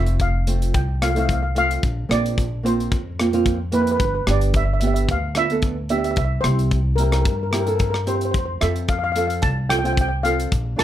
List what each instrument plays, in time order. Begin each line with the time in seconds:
Already playing: upright bass F1, nylon-string guitar A3 C4 F4, steel pan E5
0.06 closed hi-hat
0.20 steel pan F5, kick, closed hi-hat
0.47 nylon-string guitar A3 C4 F4, closed hi-hat
0.62 closed hi-hat
0.74 upright bass C2, steel pan G5, kick, closed hi-hat
1.02 nylon-string guitar A3 C4 F4, steel pan F5, cross-stick, closed hi-hat
1.10 steel pan F5
1.15 nylon-string guitar A3 C4 E4, closed hi-hat
1.19 steel pan F5
1.26 steel pan F5, kick, closed hi-hat
1.33 steel pan F5
1.43 steel pan F5
1.55 nylon-string guitar A3 C4 F4, steel pan F5, closed hi-hat
1.71 closed hi-hat
1.83 upright bass A#1, kick, closed hi-hat
2.09 upright bass A#1, nylon-string guitar A#3 C4 F4, steel pan D5, cross-stick, closed hi-hat
2.26 closed hi-hat
2.38 kick, closed hi-hat
2.63 nylon-string guitar A#3 C4 F4, steel pan C5, closed hi-hat
2.80 closed hi-hat
2.92 upright bass F2, kick, closed hi-hat
3.19 nylon-string guitar A#3 C4 F4, cross-stick, closed hi-hat
3.33 nylon-string guitar A#3 C4 F4, closed hi-hat
3.46 kick, closed hi-hat
3.72 nylon-string guitar A#3 C4 E4, steel pan B4, closed hi-hat
3.82 steel pan B4
3.87 closed hi-hat
3.91 steel pan B4
3.97 upright bass G1, steel pan B4, kick, closed hi-hat
4.05 steel pan B4
4.15 steel pan B4
4.27 upright bass G1, nylon-string guitar B3 D4 G4, steel pan D5, cross-stick, closed hi-hat
4.41 closed hi-hat
4.54 steel pan E5, kick, closed hi-hat
4.65 steel pan E5
4.73 steel pan E5
4.80 nylon-string guitar B3 D4 G4, steel pan E5, closed hi-hat
4.87 steel pan E5
4.94 steel pan E5, closed hi-hat
5.09 upright bass D2, steel pan F5, kick, closed hi-hat
5.35 nylon-string guitar B3 D4 F4, steel pan E5, cross-stick, closed hi-hat
5.50 nylon-string guitar B3 D4 A4, closed hi-hat
5.62 kick, closed hi-hat
5.89 nylon-string guitar B3 D4 G4, steel pan E5, closed hi-hat
5.98 steel pan E5
6.04 steel pan E5, closed hi-hat
6.11 steel pan E5
6.16 upright bass C2, steel pan E5, kick, closed hi-hat
6.25 steel pan E5
6.41 upright bass C2, nylon-string guitar C4, steel pan C5, cross-stick, closed hi-hat
6.45 nylon-string guitar E4 G4
6.59 closed hi-hat
6.71 kick, closed hi-hat
6.96 nylon-string guitar C4, steel pan A#4, closed hi-hat
7.00 nylon-string guitar E4 G4, steel pan A#4
7.12 steel pan A#4, cross-stick, closed hi-hat
7.21 steel pan A#4, closed hi-hat
7.25 upright bass G2, steel pan A#4, kick
7.37 steel pan A#4
7.43 steel pan A#4
7.51 nylon-string guitar C4 E4 G4, steel pan A#4, cross-stick, closed hi-hat
7.60 steel pan A#4
7.66 nylon-string guitar C4 E4 A4, steel pan A#4, closed hi-hat
7.75 steel pan A#4
7.79 steel pan A#4, kick, closed hi-hat
7.90 steel pan A#4, cross-stick
8.06 nylon-string guitar C4 E4 G4, steel pan C5, closed hi-hat
8.16 steel pan C5
8.21 closed hi-hat
8.25 steel pan C5
8.31 upright bass F2, steel pan C5, kick, closed hi-hat
8.39 steel pan C5
8.45 steel pan C5
8.61 upright bass F2, nylon-string guitar C4 F4 A4, steel pan E5, cross-stick, closed hi-hat
8.76 closed hi-hat
8.88 steel pan F5, kick, closed hi-hat
8.99 steel pan F5
9.04 steel pan F5
9.12 nylon-string guitar C4 F4, steel pan F5, closed hi-hat
9.16 nylon-string guitar A4, steel pan F5
9.27 steel pan F5, closed hi-hat
9.42 upright bass C2, steel pan A5, kick, closed hi-hat
9.69 nylon-string guitar C4 F4 A4, steel pan G5, cross-stick, closed hi-hat
9.79 steel pan G5
9.83 nylon-string guitar C4 F4 C5, steel pan G5, closed hi-hat
9.93 steel pan G5
9.97 steel pan G5, kick, closed hi-hat
10.09 steel pan G5
10.23 nylon-string guitar C4 F4 A4, steel pan F5, closed hi-hat
10.40 closed hi-hat
10.52 upright bass A#1, kick, closed hi-hat
10.76 upright bass A#1, nylon-string guitar D4 F4 A#4, steel pan A5, cross-stick, closed hi-hat